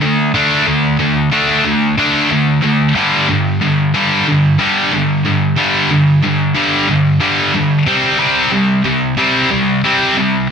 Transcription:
0.01 D3 A3
0.34 D3 A3 D4
0.66 D3 A3
0.99 D3 A3
1.32 D3 A3 D4
1.65 D3 A3
1.98 D3 A3 D4
2.31 D3 A3
2.63 D3 A3
2.95 G2 D3 G3
3.29 G2 D3
3.61 G2 D3
3.94 G2 D3 G3
4.27 G2 D3
4.59 G2 D3 G3
4.93 G2 D3
5.26 G2 D3
5.58 G2 D3 G3
5.91 G2 D3
6.23 G2 D3
6.55 G2 D3 G3
6.89 G2 D3
7.20 G2 D3 G3
7.54 G2 D3
7.86 C3 G3 C4
8.18 C3 G3 C4
8.51 C3 G3
8.85 C3 G3
9.18 C3 G3 C4
9.51 C3 G3
9.84 C3 G3 C4
10.17 C3 G3

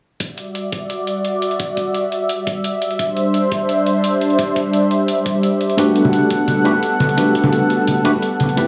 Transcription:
0.20 G3 F#4 D5 E5, kick, closed hi-hat
0.38 closed hi-hat
0.55 closed hi-hat
0.72 kick, closed hi-hat
0.90 closed hi-hat
1.07 closed hi-hat
1.25 closed hi-hat
1.42 closed hi-hat
1.51 closed hi-hat
1.60 kick, closed hi-hat
1.77 kick, closed hi-hat
1.95 closed hi-hat
2.12 closed hi-hat
2.29 closed hi-hat
2.47 kick, closed hi-hat
2.64 closed hi-hat
2.82 closed hi-hat
2.91 closed hi-hat
2.99 D4 C5, kick, closed hi-hat
3.17 closed hi-hat
3.34 closed hi-hat
3.52 kick, closed hi-hat
3.69 closed hi-hat
3.86 closed hi-hat
4.04 closed hi-hat
4.21 closed hi-hat
4.30 closed hi-hat
4.39 kick, closed hi-hat
4.56 kick, closed hi-hat
4.73 closed hi-hat
4.91 closed hi-hat
5.08 closed hi-hat
5.26 kick, closed hi-hat
5.43 closed hi-hat
5.61 closed hi-hat
5.70 closed hi-hat
5.77 A3 B3 D4 F#4 G4 A4 B4 F#5, kick, closed hi-hat
5.96 closed hi-hat
6.05 high conga
6.13 closed hi-hat
6.30 kick, closed hi-hat
6.48 closed hi-hat, high conga
6.65 A3 D4 F#4 G4 B4, closed hi-hat
6.83 closed hi-hat
7.00 closed hi-hat, high conga
7.09 closed hi-hat
7.17 A3 D4 F#4 G4 B4, kick, closed hi-hat
7.35 kick, closed hi-hat
7.44 high conga
7.53 closed hi-hat
7.70 closed hi-hat
7.88 closed hi-hat, high conga
8.04 A3 D4 F#4 G4 B4, kick, closed hi-hat
8.22 closed hi-hat
8.40 closed hi-hat, high conga
8.49 closed hi-hat
8.56 A3 C4 E4 G4 B4 G5, kick, closed hi-hat

